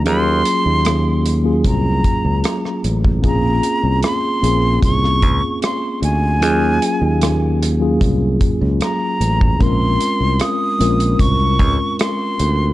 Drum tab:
HH |x-x-x-x-x-x-x-x-|x-x-x-x-x-x-x-x-|x-x-x-x-x-x-x-x-|x-x-x-xxx-x-x-x-|
SD |----r-------rr--|----r----r--r---|----r-------r---|----r-------r---|
BD |--------o-o----o|o-------o-o-----|--------o-o----o|o-------o-o-----|